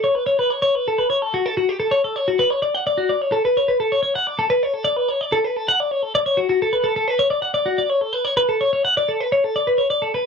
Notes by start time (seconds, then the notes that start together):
0.04 C#5
0.15 B4
0.26 C#5
0.39 B4
0.50 C#5
0.62 C#5
0.75 B4
0.88 A4
0.98 B4
1.10 C#5
1.22 A4
1.34 F#4
1.46 A4
1.57 F#4
1.69 G4
1.80 A4
1.91 C#5
2.04 A4
2.16 C#5
2.28 F#4
2.39 B4
2.50 C#5
2.62 D5
2.75 F#5
2.87 D5
2.98 F#4
3.09 D5
3.22 C#5
3.32 A4
3.45 B4
3.57 C#5
3.68 B4
3.80 A4
3.92 C#5
4.03 C#5
4.15 F#5
4.27 D5
4.39 A4
4.50 B4
4.63 C#5
4.74 A4
4.84 D5
4.97 B4
5.09 C#5
5.21 D5
5.32 A4
5.44 B4
5.57 A4
5.68 F#5
5.80 D5
5.91 C#5
6.03 A4
6.15 D5
6.26 C#5
6.37 F#4
6.49 F#4
6.62 A4
6.73 B4
6.84 A4
6.96 A4
7.08 B4
7.19 C#5
7.30 D5
7.42 F#5
7.54 D5
7.66 F#4
7.78 D5
7.90 C#5
8.01 A4
8.13 B4
8.25 C#5
8.37 B4
8.49 A4
8.61 C#5
8.73 C#5
8.85 F#5
8.97 D5
9.09 A4
9.21 B4
9.32 C#5
9.44 A4
9.56 D5
9.67 B4
9.78 C#5
9.90 D5
10.02 A4
10.14 B4